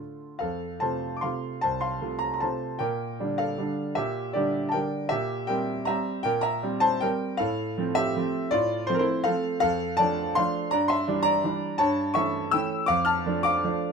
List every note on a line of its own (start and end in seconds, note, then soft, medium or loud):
0.00 0.37 D3 soft
0.00 0.38 A3 soft
0.00 0.38 F4 soft
0.39 0.81 F2 medium
0.39 0.79 A4 medium
0.39 0.81 F5 medium
0.80 1.20 C3 soft
0.80 1.21 A3 soft
0.80 1.20 F4 soft
0.80 1.14 C5 medium
0.80 1.16 A5 medium
1.17 1.24 D6 medium
1.21 1.60 C3 soft
1.21 1.61 A3 soft
1.21 1.61 F4 medium
1.21 1.61 F5 medium
1.21 1.63 C6 medium
1.61 2.02 C2 medium
1.61 1.82 C5 medium
1.61 1.82 A5 medium
1.81 2.19 F5 medium
1.81 2.21 C6 medium
2.02 2.38 C3 soft
2.02 2.38 A3 soft
2.02 2.38 F4 soft
2.19 2.32 A#5 medium
2.34 2.42 A#5 medium
2.40 2.77 C3 soft
2.40 2.77 A3 soft
2.40 2.77 F4 soft
2.40 2.78 C5 medium
2.40 2.80 A5 medium
2.79 3.19 A#2 medium
2.79 3.35 A#4 medium
2.79 3.39 G5 medium
3.20 3.55 D3 soft
3.20 3.56 G3 medium
3.20 3.56 D4 medium
3.38 3.93 A4 medium
3.38 3.97 F5 medium
3.58 3.93 D3 soft
3.58 3.93 G3 soft
3.58 3.94 D4 soft
3.95 4.35 A#2 medium
3.95 4.33 G4 medium
3.95 4.35 E5 medium
4.33 4.71 D3 medium
4.33 4.72 G3 medium
4.33 4.72 D4 medium
4.33 4.65 G4 medium
4.33 4.67 D5 medium
4.69 5.08 A#4 medium
4.69 5.11 G5 medium
4.69 4.76 A5 medium
4.74 5.08 D3 medium
4.74 5.08 G3 soft
4.74 5.08 D4 medium
5.09 5.48 A#2 medium
5.09 5.46 G4 medium
5.09 5.48 E5 loud
5.47 5.85 G3 medium
5.47 5.85 C4 medium
5.47 5.85 A#4 medium
5.47 5.88 G5 medium
5.85 6.22 G3 soft
5.85 6.23 C4 medium
5.85 6.23 E5 medium
5.85 6.25 A#5 medium
6.23 6.63 A#2 medium
6.23 6.43 A#4 medium
6.23 6.44 G5 loud
6.41 6.80 E5 medium
6.41 6.82 A#5 loud
6.63 6.99 G3 medium
6.63 6.99 C4 medium
6.80 7.01 C5 medium
6.80 7.02 A5 loud
7.00 7.37 G3 medium
7.00 7.37 C4 medium
7.00 7.38 A#4 medium
7.00 7.40 G5 loud
7.37 7.76 A2 medium
7.37 7.92 A4 medium
7.37 7.95 F5 loud
7.77 8.12 F3 medium
7.77 8.13 A3 medium
7.77 8.13 C4 medium
7.95 8.48 G4 medium
7.95 8.52 E5 loud
8.16 8.49 F3 medium
8.16 8.49 A3 medium
8.16 8.50 C4 medium
8.51 8.88 A2 medium
8.51 8.85 F4 medium
8.51 8.87 D5 loud
8.87 9.23 F3 medium
8.87 9.23 A3 medium
8.87 9.23 C4 medium
8.87 8.94 C5 loud
8.94 9.01 A#4 loud
8.99 9.24 E4 medium
8.99 9.25 C5 medium
9.24 9.59 F3 medium
9.24 9.59 A3 medium
9.24 9.59 C4 medium
9.24 9.59 A4 medium
9.24 9.59 F5 loud
9.60 9.98 F2 medium
9.60 9.96 A4 medium
9.60 9.98 F5 loud
9.97 10.33 F3 medium
9.97 10.33 A3 medium
9.97 10.33 D4 medium
9.97 10.34 D5 medium
9.97 10.35 A5 loud
10.35 10.69 F3 medium
10.35 10.69 A3 medium
10.35 10.70 D4 medium
10.35 10.70 F5 medium
10.35 10.72 C6 loud
10.71 11.07 G2 medium
10.71 10.89 D5 medium
10.71 10.89 A#5 loud
10.88 11.23 E5 medium
10.88 11.25 C6 loud
11.08 11.41 E3 medium
11.08 11.41 G3 medium
11.08 11.41 D4 medium
11.23 11.76 D5 medium
11.23 11.79 A#5 loud
11.44 11.77 E3 medium
11.44 11.77 G3 medium
11.44 11.77 D4 medium
11.78 12.15 G2 medium
11.78 12.13 C#5 medium
11.78 12.15 A5 loud
12.14 12.50 E3 medium
12.14 12.50 A3 medium
12.14 12.50 C#4 medium
12.14 12.51 E5 medium
12.14 12.53 C#6 loud
12.51 12.85 E3 medium
12.51 12.86 A3 medium
12.51 12.86 C#4 medium
12.51 12.86 G5 medium
12.51 12.88 E6 loud
12.86 13.24 F2 medium
12.86 13.05 F5 loud
12.86 13.06 D6 loud
13.05 13.41 A5 medium
13.05 13.44 F6 loud
13.26 13.60 F3 medium
13.26 13.61 A3 medium
13.26 13.61 D4 medium
13.43 13.92 F5 loud
13.43 13.92 D6 loud
13.64 13.92 F3 medium
13.64 13.92 A3 medium
13.64 13.92 D4 medium